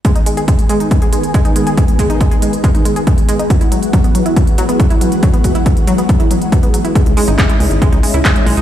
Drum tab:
HH |xxxxxxxxxxxxxxxx|xxxxxxxxxxxxxxxx|xxxxxxxxxxxxxxxx|xxxxxxxxxxxxxxxx|
CP |----------------|----------------|----------------|----------------|
BD |o---o---o---o---|o-o-o---o---o---|o---o---o---o---|o-o-o---o---o---|

HH |xxoxxxoxxxoxxxox|
CP |----x-------x---|
BD |o---o---o---o---|